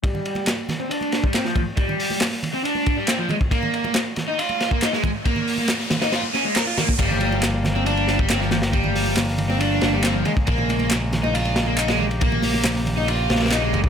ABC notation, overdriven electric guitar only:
X:1
M:4/4
L:1/16
Q:1/4=138
K:Gm
V:1 name="Overdriven electric guitar"
G,4 z3 C D3 G, C F, F, z | G,4 z3 C D3 G, C F, _A, z | B,4 z3 E F3 B, E _A, A, z | B,4 z3 E F z _D _A, B F B, z |
G,4 z3 C D3 G, C F, F, z | G,4 z3 C D3 G, C F, _A, z | B,4 z3 E F3 B, E _A, A, z | B,4 z3 E F3 B, E _A, A, z |]